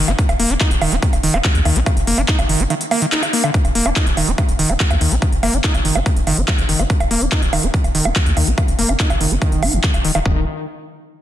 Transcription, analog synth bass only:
0.08 0.14 F#1 medium
0.29 0.35 D#1 medium
0.40 0.45 D#1 loud
0.50 0.56 D#1 medium
0.71 0.77 D#1 medium
0.81 0.87 D#1 loud
0.92 0.98 D#1 medium
1.13 1.19 D#1 medium
1.23 1.29 D#1 medium
1.34 1.40 D#1 medium
1.55 1.61 D#2 medium
1.65 1.71 D#2 loud
1.76 1.82 A#1 medium
1.97 2.03 F1 medium
2.07 2.13 F1 loud
2.18 2.24 F1 medium
2.39 2.45 F#1 medium
2.49 2.55 F#1 loud
2.60 2.66 F#1 medium
3.65 3.71 D#1 medium
3.75 3.81 D#1 loud
3.86 3.92 D#1 medium
4.07 4.13 D#1 medium
4.17 4.23 D#1 loud
4.28 4.34 D#1 loud
4.49 4.54 D#1 medium
4.59 4.65 D#1 medium
4.70 4.75 D#1 medium
4.91 4.96 D#2 medium
5.01 5.07 D#2 loud
5.12 5.17 A#1 medium
5.33 5.38 F1 medium
5.43 5.49 F1 loud
5.54 5.59 F1 medium
5.74 5.80 F#1 medium
5.85 5.91 F#1 loud
5.95 6.01 F#1 medium
6.16 6.22 D#1 medium
6.27 6.33 F#1 loud
6.37 6.43 F#1 medium
6.58 6.64 F#1 medium
6.69 6.75 F#1 loud
6.79 6.85 F#1 medium
7.00 7.06 D#1 medium
7.11 7.17 D#1 loud
7.21 7.27 D#1 medium
7.42 7.48 D#1 medium
7.53 7.59 D#1 loud
7.63 7.69 D#1 medium
7.84 7.90 D#1 medium
7.95 8.01 D#1 loud
8.05 8.11 D#1 medium
8.26 8.32 D#2 medium
8.37 8.43 D#2 loud
8.47 8.53 A#1 medium
8.68 8.74 F1 medium
8.79 8.85 F1 loud
8.89 8.95 F1 medium
9.10 9.16 F#1 medium
9.21 9.27 F#1 loud
9.31 9.37 F#1 loud
9.52 9.58 D#1 medium
9.63 9.68 F#1 loud
9.73 9.79 F#1 loud
9.94 10.00 D#1 medium
10.05 10.10 D#1 loud
10.15 10.21 D#1 medium
10.26 10.45 D#1 loud

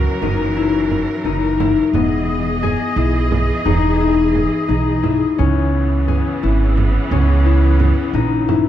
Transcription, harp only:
0.00 1.38 C#4 medium
0.00 0.28 E4 medium
0.00 1.96 F#4 medium
0.00 1.30 A#4 medium
0.22 0.63 D#4 medium
0.57 1.31 E4 medium
1.25 1.66 D#4 medium
1.60 2.96 E4 medium
1.94 5.05 B3 medium
2.63 4.90 G#4 medium
2.97 3.71 E4 medium
3.65 4.06 D#4 medium
4.00 4.74 E4 medium
4.68 5.09 D#4 medium
5.03 6.42 E4 medium
5.38 7.11 C#4 medium
6.08 8.35 G#4 medium
6.43 7.46 E4 medium
7.12 8.69 C#4 medium
7.46 8.20 E4 medium
8.14 8.54 D#4 medium
8.48 8.69 E4 medium

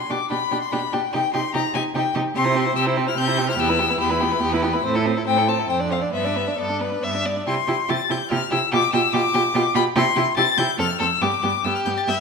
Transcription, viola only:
0.10 0.18 D4 medium
0.30 0.38 D4 medium
0.51 0.59 D4 medium
0.72 0.80 D4 medium
0.93 1.01 D4 medium
1.14 1.22 D#4 medium
1.34 1.42 D#4 medium
1.55 1.63 D#4 medium
1.75 1.83 D#4 medium
1.95 2.03 D#4 medium
2.15 2.23 D#4 medium
2.36 2.47 C4 medium
2.45 2.56 E4 medium
2.55 2.67 C4 medium
2.66 2.75 E4 medium
2.76 2.88 C4 medium
2.87 2.99 E4 medium
2.97 3.09 C4 medium
3.08 3.17 E4 medium
3.18 3.30 C4 medium
3.28 3.40 E4 medium
3.38 3.50 C4 medium
3.49 3.58 E4 medium
3.59 3.71 B3 medium
3.70 3.82 E4 medium
3.80 3.92 B3 medium
3.91 4.00 E4 medium
4.01 4.13 B3 medium
4.12 4.24 E4 medium
4.22 4.34 B3 medium
4.32 4.42 E4 medium
4.43 4.55 B3 medium
4.54 4.66 E4 medium
4.64 4.76 B3 medium
4.75 4.84 E4 medium
4.85 4.97 C4 medium
4.96 5.07 E4 medium
5.06 5.19 C4 medium
5.17 5.27 E4 medium
5.27 5.39 C4 medium
5.38 5.50 E4 medium
5.48 5.61 C4 medium
5.59 5.69 E4 soft
5.70 5.82 C4 medium
5.80 5.93 D4 medium
5.92 6.04 C4 medium
6.02 6.13 D4 soft
6.14 6.27 B3 medium
6.26 6.38 D4 soft
6.36 6.49 B3 soft
6.47 6.58 D4 soft
6.58 6.71 B3 soft
6.69 6.82 D4 soft
6.80 6.93 B3 soft
6.91 7.02 D4 soft
7.03 7.16 B3 soft
7.14 7.26 D4 soft
7.25 7.37 B3 soft
7.36 7.46 D4 soft
7.47 7.55 E4 medium
7.68 7.76 E4 medium
7.89 7.97 E4 medium
8.09 8.17 E4 medium
8.30 8.38 E4 medium
8.51 8.59 E4 medium
8.72 8.80 F4 medium
8.93 9.01 F4 medium
9.14 9.22 F4 medium
9.34 9.42 F4 medium
9.55 9.63 F4 medium
9.76 9.84 F4 medium
9.96 10.04 E4 medium
10.17 10.25 E4 medium
10.38 10.46 E4 medium
10.59 10.67 E4 medium
10.79 10.87 C4 medium
11.01 11.09 C4 medium
11.22 11.30 B3 medium
11.44 11.52 B3 medium
11.65 11.73 B3 medium
11.87 11.95 B3 medium
12.08 12.16 B3 medium

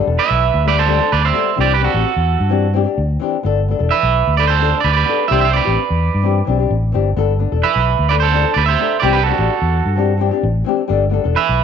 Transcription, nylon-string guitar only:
0.07 0.22 D4 soft
0.07 0.22 A4 medium
0.11 0.24 B3 soft
0.64 0.80 G3 medium
0.64 0.80 B3 medium
0.64 0.81 D4 medium
0.64 muted nylon-string guitar stroke medium
0.87 1.01 G3 medium
0.87 1.01 B3 medium
0.87 1.00 D4 medium
0.87 0.99 A4 medium
1.00 1.16 B3 soft
1.00 1.15 D4 soft
1.00 1.15 A4 medium
1.32 1.49 G3 medium
1.32 1.50 B3 medium
1.32 1.51 A4 medium
1.32 muted nylon-string guitar stroke medium
1.56 1.72 E3 medium
1.56 1.73 C4 medium
1.56 1.73 D4 medium
1.56 1.74 G4 medium
1.79 1.93 E3 medium
1.79 1.94 C4 medium
1.79 1.94 D4 medium
1.79 1.92 G4 medium
1.93 2.09 C4 soft
1.93 2.08 G4 medium
2.49 2.65 E3 medium
2.49 2.66 C4 medium
2.49 2.66 D4 medium
2.49 2.67 G4 medium
2.73 2.87 E3 medium
2.73 2.87 C4 medium
2.73 2.85 D4 medium
2.73 2.83 G4 medium
2.84 3.01 D4 medium
2.84 3.00 G4 medium
2.84 muted nylon-string guitar stroke soft
3.20 3.36 E3 medium
3.20 3.36 C4 medium
3.20 3.37 D4 medium
3.20 3.37 G4 medium
3.43 3.59 B3 medium
3.43 3.60 D4 medium
3.43 3.60 A4 medium
3.68 3.81 B3 medium
3.68 3.82 D4 medium
3.68 3.78 A4 medium
3.79 3.94 A4 medium
3.83 3.96 D4 soft
4.35 4.53 D4 medium
4.35 4.53 A4 medium
4.35 muted nylon-string guitar stroke medium
4.59 4.73 B3 medium
4.59 4.74 D4 medium
4.59 4.70 A4 medium
4.72 4.88 D4 soft
4.72 muted nylon-string guitar stroke medium
5.05 5.21 B3 medium
5.05 5.23 D4 medium
5.05 5.23 A4 medium
5.29 5.45 E3 medium
5.29 5.45 C4 medium
5.29 5.46 D4 medium
5.29 5.46 G4 medium
5.52 5.66 E3 medium
5.52 5.66 C4 medium
5.52 5.65 D4 medium
5.65 5.81 C4 soft
5.65 5.80 D4 soft
5.65 5.80 G4 medium
6.22 6.38 E3 medium
6.22 6.38 C4 medium
6.22 6.39 D4 medium
6.22 6.40 G4 medium
6.45 6.59 E3 medium
6.45 6.60 C4 medium
6.45 6.59 D4 medium
6.49 6.58 G4 medium
6.59 6.75 C4 soft
6.59 6.74 D4 medium
6.59 6.73 G4 medium
6.92 7.08 E3 medium
6.92 7.09 C4 medium
6.92 7.09 D4 medium
6.92 7.09 G4 medium
7.16 7.32 B3 medium
7.16 7.32 D4 medium
7.16 7.33 A4 medium
7.39 7.52 B3 medium
7.39 7.53 D4 medium
7.52 7.68 D4 soft
7.52 7.66 A4 medium
8.08 8.24 B3 medium
8.08 8.25 D4 medium
8.12 8.26 A4 medium
8.32 8.45 B3 medium
8.32 8.46 D4 medium
8.36 8.42 A4 medium
8.43 8.58 A4 medium
8.47 8.60 D4 soft
8.79 8.94 B3 medium
8.79 8.95 D4 medium
8.79 8.96 A4 medium
9.02 9.17 E3 medium
9.02 9.18 C4 medium
9.02 9.18 D4 medium
9.02 9.19 G4 medium
9.26 9.39 E3 medium
9.26 9.39 C4 medium
9.26 9.37 D4 medium
9.26 9.36 G4 medium
9.37 9.52 D4 medium
9.37 9.52 G4 medium
9.41 muted nylon-string guitar stroke soft
9.95 10.11 E3 medium
9.95 10.11 C4 medium
9.95 10.12 D4 medium
9.95 10.12 G4 medium
10.18 10.31 E3 medium
10.18 10.32 C4 medium
10.18 10.32 D4 medium
10.18 10.30 G4 medium
10.31 10.47 C4 soft
10.31 10.46 D4 medium
10.31 10.45 G4 medium
10.64 10.80 E3 medium
10.64 10.81 C4 medium
10.64 10.82 D4 medium
10.69 10.82 G4 medium
10.88 11.03 G3 medium
10.88 11.04 B3 medium
10.88 11.04 D4 medium
10.88 11.05 A4 medium
11.09 11.24 G3 medium
11.09 11.24 B3 medium
11.09 11.24 D4 medium
11.09 11.22 A4 medium
11.24 11.40 B3 soft
11.24 11.39 D4 soft
11.24 11.38 A4 soft

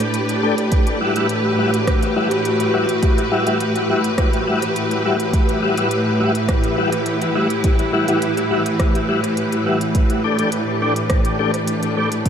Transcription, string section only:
0.00 12.29 A2 medium
0.00 0.72 A3 medium
0.00 2.58 D4 medium
0.00 12.29 G4 medium
0.00 12.29 B4 medium
0.93 12.29 E3 medium
1.40 6.47 F#4 medium
6.31 10.98 E4 medium
10.71 12.29 D4 medium

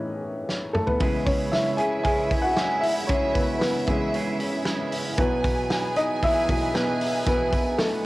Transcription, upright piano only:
0.00 1.03 A2 medium
0.00 1.00 E3 medium
0.00 0.88 B3 medium
0.00 1.03 C#4 medium
0.00 1.02 D#4 medium
0.00 0.86 B4 medium
0.00 1.03 C#5 loud
0.00 1.03 D#5 loud
0.73 0.87 A3 medium
0.73 0.86 A4 medium
0.86 1.24 B3 medium
0.86 1.28 B4 medium
1.00 1.35 C#3 medium
1.00 1.35 E3 soft
1.00 1.36 G#3 medium
1.26 1.51 C#4 medium
1.26 1.51 C#5 medium
1.52 1.78 E4 medium
1.52 1.79 E5 medium
1.77 2.04 G#4 medium
1.77 2.02 G#5 loud
2.03 2.42 G#4 medium
2.03 2.45 G#5 loud
2.42 2.81 F#4 medium
2.42 2.79 F#5 loud
2.81 3.07 E4 medium
2.81 3.09 E5 medium
3.07 3.34 C#4 medium
3.07 3.35 C#5 medium
3.34 3.59 B3 medium
3.34 3.57 B4 medium
3.59 4.62 B3 medium
3.59 4.60 B4 medium
3.87 4.62 C#3 medium
3.87 4.62 E3 medium
3.87 4.62 G#3 medium
5.18 5.93 B2 medium
5.18 5.93 E3 medium
5.18 5.93 F#3 medium
5.18 5.93 B3 medium
5.18 5.99 B4 medium
5.97 6.22 D#4 medium
5.97 6.23 D#5 loud
6.24 6.72 E4 medium
6.24 6.77 E5 loud
6.49 6.72 B2 medium
6.49 6.72 E3 medium
6.49 6.73 F#3 medium
6.75 7.24 B3 medium
6.75 7.26 B4 medium
7.27 7.76 B3 medium
7.27 7.81 B4 loud
7.78 8.03 A3 medium
7.78 8.05 A4 medium

